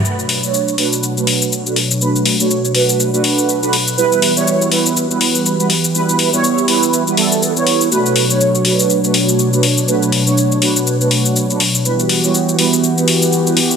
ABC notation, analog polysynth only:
X:1
M:4/4
L:1/16
Q:"Swing 16ths" 1/4=122
K:Bm
V:1 name="Analog polysynth"
[A,DFB]3 [A,DFc]3 [A,DFB]3 [A,DFB]4 [A,DFB] z2 | [A,DFB]3 [A,DFc]3 [A,DFB]3 [A,DFB]4 [A,DFB] z2 | [G,B,EB]3 [G,B,Ec]3 [G,B,EB]3 [G,B,EB]4 [G,B,EB] z2 | [G,B,EB]3 [G,B,Ec]3 [G,B,EB]3 [G,B,EB] [G,B,EA]3 [G,B,Ec]3 |
[A,DFB]3 [A,DFc]3 [A,DFB]3 [A,DFB]4 [A,DFB] z2 | [A,DFB]3 [A,DFc]3 [A,DFB]3 [A,DFB]4 [A,DFB] z2 | [G,B,EB]3 [G,B,Ec]3 [G,B,EB]3 [G,B,EB]4 [G,B,EB] z2 |]